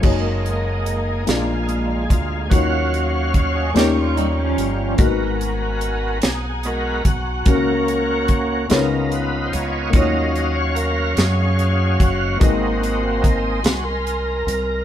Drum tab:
CC |x-----|------|------|------|
HH |-xxxxx|xxxxxx|xxxxxx|xxxxxx|
SD |---o--|---o--|---o--|---o--|
BD |o----o|o-o---|o----o|o-o---|

CC |------|------|
HH |xxxxxx|xxxxxx|
SD |---o--|---o--|
BD |o----o|o-o---|